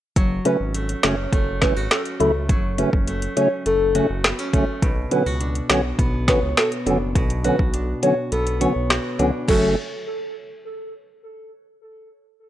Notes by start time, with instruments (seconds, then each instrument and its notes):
0.16 analog synth bass F#1, nylon-string guitar F#3, kick, closed hi-hat
0.45 tonewheel organ C#3 F#3 A3 C#4, nylon-string guitar C#4, soft synth lead B4, closed hi-hat
0.60 analog synth bass G#1
0.74 nylon-string guitar A3, closed hi-hat
0.89 closed hi-hat
1.03 analog synth bass F#1, tonewheel organ C#3 F#3 A3 C#4, nylon-string guitar C#4, soft synth lead C#5, snare, closed hi-hat
1.33 analog synth bass F#1, nylon-string guitar A3, kick, closed hi-hat
1.62 tonewheel organ C#3 F#3 A3 C#4, nylon-string guitar E4, soft synth lead B4, kick, snare, closed hi-hat
1.76 analog synth bass G#1, nylon-string guitar F#4
1.91 nylon-string guitar C#4, soft synth lead A4, snare, closed hi-hat
2.05 closed hi-hat
2.20 analog synth bass C#2, tonewheel organ C#3 F#3 A3 E4, nylon-string guitar A3, soft synth lead A4, closed hi-hat
2.49 analog synth bass F#1, nylon-string guitar F#3, kick, closed hi-hat
2.78 tonewheel organ C#3 F#3 A3 C#4, nylon-string guitar C#4, soft synth lead B4, closed hi-hat
2.93 analog synth bass F#1, kick
3.07 nylon-string guitar A3, closed hi-hat
3.22 closed hi-hat
3.37 tonewheel organ C#3 F#3 A3 C#4, nylon-string guitar C#4, soft synth lead C#5, closed hi-hat
3.66 analog synth bass F#1, nylon-string guitar A3, soft synth lead A4, closed hi-hat
3.95 tonewheel organ C#3 F#3 A3 C#4, nylon-string guitar F#4, closed hi-hat
4.10 analog synth bass F#1
4.24 nylon-string guitar B3, snare, closed hi-hat
4.39 nylon-string guitar C#4, closed hi-hat
4.53 analog synth bass G#1, tonewheel organ C#3 F#3 A3 C#4, nylon-string guitar A3, kick, closed hi-hat
4.82 analog synth bass B1, nylon-string guitar B2, kick, closed hi-hat
5.11 tonewheel organ D3 F#3 B3 C#4, nylon-string guitar E4, soft synth lead B4, closed hi-hat
5.26 analog synth bass C#2, nylon-string guitar F#4
5.41 nylon-string guitar D4, closed hi-hat
5.55 closed hi-hat
5.70 analog synth bass B1, tonewheel organ D3 F#3 B3 C#4, nylon-string guitar F#4, soft synth lead C#5, snare, closed hi-hat
5.99 analog synth bass B1, nylon-string guitar B3, kick, closed hi-hat
6.28 tonewheel organ D3 F#3 B3 C#4, soft synth lead B4, nylon-string guitar C#5, kick, snare, closed hi-hat
6.43 analog synth bass C#2
6.57 nylon-string guitar F#4, soft synth lead A4, snare, closed hi-hat
6.72 closed hi-hat
6.86 analog synth bass F#1, tonewheel organ D3 F#3 B3 C#4, nylon-string guitar D4, soft synth lead A4, closed hi-hat
7.15 analog synth bass B1, nylon-string guitar B2, kick, closed hi-hat
7.30 closed hi-hat
7.44 tonewheel organ D3 F#3 B3 C#4, nylon-string guitar F#4, soft synth lead B4, closed hi-hat
7.59 analog synth bass B1, kick
7.74 nylon-string guitar D4, closed hi-hat
8.03 tonewheel organ D3 F#3 B3 C#4, nylon-string guitar F#4, soft synth lead C#5, closed hi-hat
8.32 analog synth bass B1, nylon-string guitar B3, soft synth lead A4, closed hi-hat
8.47 closed hi-hat
8.61 tonewheel organ D3 F#3 B3 C#4, nylon-string guitar C#5, closed hi-hat
8.76 analog synth bass B1
8.90 nylon-string guitar F#4, cross-stick, snare, closed hi-hat
9.19 analog synth bass C#2, tonewheel organ D3 F#3 B3 C#4, nylon-string guitar D4, closed hi-hat
9.48 analog synth bass F#1, tonewheel organ C#3 F#3 A3 C#4, nylon-string guitar F#3 A3 C#4 F#4, soft synth lead A4, kick, crash